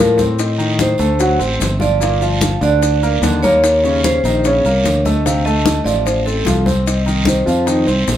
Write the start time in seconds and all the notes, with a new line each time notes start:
Already playing: A2 F3 A#4
0.00 F4, high conga
0.18 C4 C5, high bongo, high conga, short guiro, maracas
0.39 D#5, high bongo, high conga, long guiro, maracas
0.58 D#3 D#4, high bongo, high conga, maracas
0.79 C5, high bongo, high conga, short guiro, maracas
0.98 D2 A3 A4, high conga, short guiro, maracas
1.19 F#3 F#4, high bongo, high conga, long guiro, maracas
1.39 A1 C4 C5, high bongo, high conga, maracas
1.59 G1, high bongo, low bongo, high conga, short guiro, maracas
1.80 F3 F4 D5, high bongo, high conga, short guiro, maracas
2.00 A#2 A#3, high bongo, high conga, long guiro, maracas
2.21 F3 F4 F5, high conga, maracas
2.41 high bongo, high conga, short guiro, maracas
2.61 D2 D3 D4 D5, high bongo, high conga, short guiro, maracas
2.82 high bongo, high conga, long guiro, maracas
3.03 A#3 A#4, high bongo, high conga, maracas
3.22 D#2 D3 D4, high bongo, low bongo, high conga, short guiro, maracas
3.43 A#3 A#4 C#5, high bongo, high conga, short guiro, maracas
3.64 high bongo, high conga, long guiro, maracas
3.83 C#3 C#4, high bongo, high conga, maracas
4.04 C5, high bongo, high conga, short guiro, maracas
4.24 A#1 D#3 D#4, high conga, short guiro, maracas
4.44 C#3 C#4 C#5, high bongo, high conga, long guiro, maracas
4.65 C2 A#3 A#4, high bongo, high conga, maracas
4.84 D2, high bongo, low bongo, high conga, short guiro, maracas
5.05 A3 A4 D#5, high bongo, high conga, short guiro, maracas
5.26 C3 C4 F5, high bongo, high conga, long guiro, maracas
5.45 A3 A4 D#5, high conga, maracas
5.66 high bongo, high conga, short guiro, maracas
5.85 A1 F3 F4 D5, high bongo, high conga, short guiro, maracas
6.06 C5, high bongo, high conga, long guiro, maracas
6.25 C4 A4 C5, high bongo, high conga, maracas
6.45 C2 F3 F4, high bongo, low bongo, high conga, short guiro, maracas
6.66 C4 C5, high bongo, high conga, short guiro, maracas
6.86 D#5, high bongo, high conga, long guiro, maracas
7.06 D#3 D#4, high bongo, high conga, maracas
7.25 C5, high bongo, high conga, short guiro, maracas
7.46 F2 F3 F4, high conga, short guiro, maracas
7.66 D#3 D#4, high bongo, high conga, long guiro, maracas
7.87 C2 C4 C5, high bongo, high conga, maracas
8.07 A#1, high bongo, low bongo, high conga, short guiro, maracas